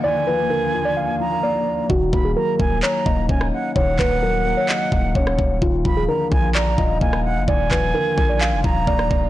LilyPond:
<<
  \new Staff \with { instrumentName = "Flute" } { \time 4/4 \key ees \minor \tempo 4 = 129 aes''2~ aes''8 bes''4. | r8 ces'''8 bes''8 aes''8 bes''4 aes''8 ges''8 | ges''1 | r8 ces'''8 bes''8 aes''8 bes''4 aes''8 ges''8 |
aes''2~ aes''8 bes''4. | }
  \new Staff \with { instrumentName = "Synth keys" } { \time 4/4 \key ees \minor d''8 ces''8 bes'8. d''16 f''4 d''4 | ges'8. aes'16 bes'4 des''8 ees''4. | des''8 ces''8 bes'8. des''16 ees''4 des''4 | f'8. aes'16 bes'4 d''8 ees''4. |
d''8 ces''8 bes'8. d''16 f''4 d''4 | }
  \new Staff \with { instrumentName = "Ambient pad" } { \time 4/4 \key ees \minor <ees, d bes f' bes'>1 | r1 | r1 | r1 |
r1 | }
  \new Staff \with { instrumentName = "Felt piano" } { \clef bass \time 4/4 \key ees \minor <ees, f bes>8 f8 d8 f4 f8 bes4 | ees8 bes8 ges8 bes4 bes8 des'4 | ees8 bes8 ges8 bes4 bes8 des'4 | ees,8 f8 d8 f4 f8 bes4 |
ees,8 f8 d8 f4 f8 bes4 | }
  \new Staff \with { instrumentName = "808-style bass" } { \clef bass \time 4/4 \key ees \minor r1 | ees,,8 ees,,8 r8 ees,,8 r8 ees,,8 ees,,8 r8 | ees,,8 ees,,4~ ees,,16 r8. ees,,8 ees,,8 ees,,8 | ees,,8 ees,,8 r8 bes,,4 ees,,8 ees,,8. ges,,16 |
ees,,8 ees,,8 r8 bes,,8. f,,16 ees,,8 ees,,8 ees,,8 | }
  \new DrumStaff \with { instrumentName = "Drums" } \drummode { \time 4/4 r4 r4 r4 r4 | bd8 bd8 r8 bd8 hc8 bd8 bd16 ss8. | bd8 <hc bd>8 r4 hc8 bd8 bd16 ss16 bd8 | bd8 bd8 r8 bd8 hc8 bd8 bd16 ss8. |
bd8 <hc bd>8 r8 bd8 hc8 bd8 bd16 ss16 bd8 | }
>>